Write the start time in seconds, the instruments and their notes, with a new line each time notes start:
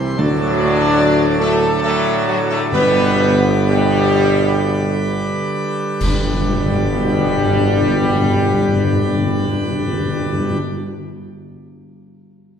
Already playing: tuba C2, trombone section C3 E3, pipe organ E3 G3 C4 C5
0.18 tuba D2, trombone section A2 F#3, pipe organ D3 F#3 D4 A4, timpani D3, french horn section D4, trumpet section D5
1.40 french horn section A3, trumpet section A4
1.82 trombone section A2 F#3, french horn section A3, trumpet section A4
2.28 french horn section F#3, trumpet section F#4
2.50 french horn section A3, trumpet section A4
2.71 tuba G1, timpani G2, trombone section B2 G3, pipe organ G3 B4, french horn section B3, trumpet section B4
3.69 trombone section B2 G3, french horn section G3, trumpet section G4
6.01 tuba G1, timpani G2, trombone section B2 G3, pipe organ D3 G3 D4 B4, french horn section G3, trumpet section G4, concert bass drum, crash
6.07 timpani G2
6.13 timpani G2
6.20 timpani G2
6.27 timpani G2
6.33 timpani G2
6.40 timpani G2
6.46 timpani G2
6.53 timpani G2
6.59 timpani G2
6.65 timpani G2
6.72 timpani G2
6.78 timpani G2
6.84 timpani G2
6.91 timpani G2
6.98 timpani G2
7.04 timpani G2
7.11 timpani G2
7.17 timpani G2
7.24 timpani G2
7.31 timpani G2
7.37 timpani G2
7.44 timpani G2
7.50 timpani G2
7.57 timpani G2
7.64 timpani G2
7.69 timpani G2
7.75 timpani G2
7.82 timpani G2
7.88 timpani G2
7.94 timpani G2
8.01 timpani G2
8.08 timpani G2
8.14 timpani G2
8.21 timpani G2
8.28 timpani G2
8.34 timpani G2
8.41 timpani G2
8.47 timpani G2
8.54 timpani G2
8.60 timpani G2
8.67 timpani G2
8.74 timpani G2
8.80 timpani G2
8.86 timpani G2
8.93 timpani G2
8.99 timpani G2
9.06 timpani G2
9.13 timpani G2
9.19 timpani G2
9.26 timpani G2
9.33 timpani G2
9.40 timpani G2
9.46 timpani G2
9.53 timpani G2
9.59 timpani G2
9.65 timpani G2
9.72 timpani G2
9.79 timpani G2
9.86 timpani G2
9.92 timpani G2
9.99 timpani G2
10.05 timpani G2
10.13 timpani G2
10.19 timpani G2
10.26 timpani G2
10.32 timpani G2
10.39 timpani G2
10.44 timpani G2
10.51 timpani G2